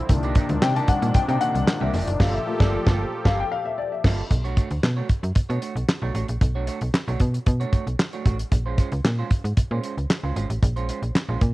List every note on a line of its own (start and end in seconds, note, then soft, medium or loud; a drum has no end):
0.00 0.20 E5 medium
0.09 0.38 C2 loud
0.09 4.27 A#2 medium
0.09 2.18 C3 medium
0.09 1.39 D#3 medium
0.09 2.18 D#3 medium
0.09 1.39 A#3 soft
0.09 2.18 D4 medium
0.09 1.40 D4 medium
0.09 muted clean electric guitar stroke soft
0.09 kick loud
0.09 closed hi-hat medium
0.09 low conga medium
0.23 0.34 A#3 medium
0.23 0.35 D#4 medium
0.23 0.35 G4 medium
0.23 0.36 D5 medium
0.23 closed hi-hat soft
0.23 muted conga soft
0.35 0.47 A#3 medium
0.35 0.47 D#4 medium
0.35 0.48 G4 medium
0.35 0.48 D5 medium
0.35 kick loud
0.35 closed hi-hat medium
0.49 0.58 D2 loud
0.49 muted clean electric guitar stroke medium
0.49 closed hi-hat soft
0.49 high conga medium
0.62 0.81 C3 loud
0.62 0.76 G5 loud
0.62 snare loud
0.62 clap medium
0.76 0.87 A#3 medium
0.76 0.87 D#4 medium
0.76 0.87 G4 medium
0.76 0.88 D5 medium
0.76 0.89 A5 loud
0.76 closed hi-hat soft
0.88 1.16 F#5 loud
0.88 muted clean electric guitar stroke soft
0.88 kick medium
0.88 closed hi-hat medium
0.88 high conga medium
1.02 1.11 A#2 medium
1.02 muted clean electric guitar stroke soft
1.02 closed hi-hat soft
1.02 high conga medium
1.14 1.20 C3 soft
1.14 1.20 G5 loud
1.14 muted clean electric guitar stroke soft
1.14 kick loud
1.14 closed hi-hat loud
1.28 1.37 C3 loud
1.28 1.40 A#3 medium
1.28 1.40 D#4 medium
1.28 1.41 G4 medium
1.28 1.41 D5 medium
1.28 1.40 G5 loud
1.28 closed hi-hat soft
1.28 muted conga soft
1.40 1.64 D#3 medium
1.40 1.65 A#3 soft
1.40 1.52 A#3 medium
1.40 1.65 D4 medium
1.40 1.53 D#4 medium
1.40 1.53 G4 medium
1.40 1.53 D5 medium
1.40 1.83 F#5 loud
1.40 closed hi-hat medium
1.55 1.64 C2 medium
1.55 closed hi-hat soft
1.55 high conga medium
1.67 muted clean electric guitar stroke soft
1.67 snare loud
1.67 clap loud
1.80 1.90 C2 medium
1.80 1.92 A#3 medium
1.80 1.93 D#4 medium
1.80 1.93 G4 medium
1.80 1.93 D5 medium
1.80 2.06 E5 medium
1.80 high conga medium
1.93 2.04 F1 medium
1.93 2.05 A#3 medium
1.93 2.05 D#4 medium
1.93 2.05 G4 medium
1.93 2.06 D5 medium
1.93 open hi-hat medium
1.93 low conga medium
2.07 2.16 F#1 medium
2.07 2.19 D5 medium
2.07 muted clean electric guitar stroke soft
2.07 closed hi-hat medium
2.20 2.38 G1 loud
2.20 4.29 F3 medium
2.20 2.39 A#3 loud
2.20 2.39 F4 loud
2.20 4.29 G4 loud
2.20 2.38 A4 loud
2.20 4.29 A4 medium
2.20 2.38 D5 loud
2.20 2.34 F5 medium
2.20 kick loud
2.20 snare loud
2.20 crash medium
2.34 2.58 E5 medium
2.46 3.21 A3 medium
2.46 3.21 A#3 medium
2.46 3.22 F4 medium
2.60 2.78 G1 loud
2.60 2.78 A#3 medium
2.60 2.78 F4 loud
2.60 2.78 A4 loud
2.60 2.85 D5 medium
2.60 2.79 D5 loud
2.60 kick loud
2.60 snare loud
2.86 3.04 G1 loud
2.86 3.05 A#3 loud
2.86 3.04 F4 loud
2.86 3.04 A4 loud
2.86 3.04 D5 loud
2.86 kick loud
2.86 snare loud
3.25 3.44 G1 loud
3.25 3.44 A#3 loud
3.25 3.44 F4 loud
3.25 3.44 A4 loud
3.25 3.43 D5 loud
3.25 3.39 F5 loud
3.25 kick loud
3.25 snare loud
3.40 3.52 G5 loud
3.52 3.66 F5 loud
3.66 3.78 E5 medium
3.78 3.91 D5 medium
3.92 4.17 E5 medium
4.04 4.23 G1 loud
4.04 4.23 A#3 loud
4.04 4.23 F4 loud
4.04 4.23 A4 loud
4.04 4.23 D5 loud
4.04 kick loud
4.04 snare loud
4.04 crash medium
4.31 4.59 B1 loud
4.31 muted clean electric guitar stroke soft
4.31 kick medium
4.31 closed hi-hat medium
4.44 4.55 A3 medium
4.44 4.56 D4 medium
4.44 4.57 F#4 medium
4.44 4.57 C#5 medium
4.44 closed hi-hat soft
4.57 4.68 A3 medium
4.57 4.69 D4 medium
4.57 4.69 F#4 medium
4.57 4.69 C#5 medium
4.57 kick medium
4.57 closed hi-hat medium
4.71 4.80 D2 medium
4.71 muted clean electric guitar stroke soft
4.71 closed hi-hat soft
4.83 5.02 B2 medium
4.83 muted clean electric guitar stroke soft
4.83 snare loud
4.83 clap medium
4.97 5.08 A3 medium
4.97 5.08 D4 medium
4.97 5.09 F#4 medium
4.97 5.09 C#5 medium
5.09 kick medium
5.09 closed hi-hat medium
5.23 5.32 F#2 medium
5.23 muted clean electric guitar stroke soft
5.23 closed hi-hat soft
5.35 5.42 B2 soft
5.35 muted clean electric guitar stroke soft
5.35 kick loud
5.35 closed hi-hat medium
5.49 5.59 B2 medium
5.49 5.60 A3 medium
5.49 5.61 D4 medium
5.49 5.61 F#4 medium
5.49 5.62 C#5 medium
5.49 closed hi-hat soft
5.62 5.73 A3 medium
5.62 5.74 D4 medium
5.62 5.74 F#4 medium
5.62 5.74 C#5 medium
5.62 closed hi-hat medium
5.76 5.85 B1 medium
5.76 muted clean electric guitar stroke soft
5.76 closed hi-hat soft
5.89 snare loud
5.89 clap medium
6.02 6.11 B1 medium
6.02 6.13 A3 medium
6.02 6.13 D4 medium
6.02 6.14 F#4 medium
6.02 6.14 C#5 medium
6.14 6.25 A1 medium
6.14 6.26 A3 medium
6.14 6.26 D4 medium
6.14 6.26 F#4 medium
6.14 6.26 C#5 medium
6.14 closed hi-hat medium
6.28 6.38 A#1 medium
6.28 muted clean electric guitar stroke soft
6.28 closed hi-hat medium
6.41 6.70 B1 loud
6.41 muted clean electric guitar stroke soft
6.41 kick medium
6.41 closed hi-hat medium
6.55 6.66 A3 medium
6.55 6.66 D4 medium
6.55 6.67 F#4 medium
6.55 6.67 C#5 medium
6.67 6.79 A3 medium
6.67 6.79 D4 medium
6.67 6.79 F#4 medium
6.67 6.79 C#5 medium
6.67 closed hi-hat medium
6.81 6.90 B1 medium
6.81 closed hi-hat soft
6.94 muted clean electric guitar stroke soft
6.94 snare loud
6.94 clap medium
7.08 7.17 B1 loud
7.08 7.19 A3 medium
7.08 7.20 D4 medium
7.08 7.20 F#4 medium
7.08 7.20 C#5 medium
7.08 closed hi-hat soft
7.20 7.39 B2 loud
7.20 kick medium
7.20 closed hi-hat medium
7.34 muted clean electric guitar stroke soft
7.34 closed hi-hat soft
7.46 7.65 B2 loud
7.46 muted clean electric guitar stroke soft
7.46 kick loud
7.46 closed hi-hat loud
7.60 7.71 A3 medium
7.60 7.72 D4 medium
7.60 7.72 F#4 medium
7.60 7.73 C#5 medium
7.60 closed hi-hat soft
7.73 7.84 A3 medium
7.73 7.84 D4 medium
7.73 7.85 F#4 medium
7.73 7.85 C#5 medium
7.73 kick medium
7.73 closed hi-hat medium
7.87 7.96 B1 medium
7.87 muted clean electric guitar stroke soft
7.87 closed hi-hat soft
7.99 muted clean electric guitar stroke soft
7.99 snare loud
7.99 clap medium
8.13 8.24 A3 medium
8.13 8.25 D4 medium
8.13 8.25 F#4 medium
8.13 8.26 C#5 medium
8.13 closed hi-hat soft
8.26 8.44 A1 medium
8.26 8.37 A3 medium
8.26 8.37 D4 medium
8.26 8.37 F#4 medium
8.26 8.38 C#5 medium
8.26 kick medium
8.26 closed hi-hat medium
8.39 closed hi-hat medium
8.52 8.80 A#1 medium
8.52 muted clean electric guitar stroke soft
8.52 kick loud
8.52 closed hi-hat medium
8.66 8.77 G#3 medium
8.66 8.78 C#4 medium
8.66 8.78 F4 medium
8.66 8.79 C5 medium
8.78 8.89 G#3 medium
8.78 8.90 C#4 medium
8.78 8.90 F4 medium
8.78 8.90 C5 medium
8.78 kick medium
8.78 closed hi-hat medium
8.92 9.01 C#2 loud
8.92 muted clean electric guitar stroke soft
8.92 closed hi-hat soft
9.04 9.23 A#2 medium
9.04 muted clean electric guitar stroke soft
9.04 snare loud
9.04 clap medium
9.19 9.30 G#3 medium
9.19 9.30 C#4 medium
9.19 9.31 F4 medium
9.19 9.31 C5 medium
9.31 muted clean electric guitar stroke soft
9.31 kick medium
9.31 closed hi-hat medium
9.44 9.53 G#2 medium
9.44 muted clean electric guitar stroke soft
9.44 closed hi-hat soft
9.57 9.63 A#2 soft
9.57 muted clean electric guitar stroke soft
9.57 kick loud
9.57 closed hi-hat medium
9.71 9.80 A#2 loud
9.71 9.82 G#3 medium
9.71 9.83 C#4 medium
9.71 9.83 F4 medium
9.71 9.84 C5 medium
9.83 9.95 G#3 medium
9.83 9.95 C#4 medium
9.83 9.95 F4 medium
9.83 9.95 C5 medium
9.83 closed hi-hat medium
9.97 10.06 C#2 medium
9.97 closed hi-hat soft
10.10 muted clean electric guitar stroke soft
10.10 snare loud
10.10 clap medium
10.23 10.32 C#2 medium
10.23 10.35 G#3 medium
10.23 10.35 C#4 medium
10.23 10.36 F4 medium
10.23 10.36 C5 medium
10.36 10.46 G#1 medium
10.36 10.47 G#3 medium
10.36 10.48 C#4 medium
10.36 10.48 F4 medium
10.36 10.48 C5 medium
10.36 closed hi-hat medium
10.50 10.59 A1 medium
10.50 closed hi-hat medium
10.62 10.91 A#1 loud
10.62 muted clean electric guitar stroke soft
10.62 kick loud
10.62 closed hi-hat medium
10.76 10.88 G#3 medium
10.76 10.88 C#4 medium
10.76 10.88 F4 medium
10.76 10.89 C5 medium
10.76 closed hi-hat soft
10.89 11.00 G#3 medium
10.89 11.00 C#4 medium
10.89 11.01 F4 medium
10.89 11.01 C5 medium
10.89 closed hi-hat medium
11.02 11.11 A#1 medium
11.02 muted clean electric guitar stroke soft
11.02 closed hi-hat soft
11.15 muted clean electric guitar stroke soft
11.15 snare loud
11.15 clap medium
11.29 11.37 A#1 loud
11.29 11.41 G#3 medium
11.29 11.41 C#4 medium
11.29 11.41 F4 medium
11.29 11.41 C5 medium
11.41 11.54 A#2 medium
11.41 muted clean electric guitar stroke soft
11.41 kick medium
11.41 closed hi-hat medium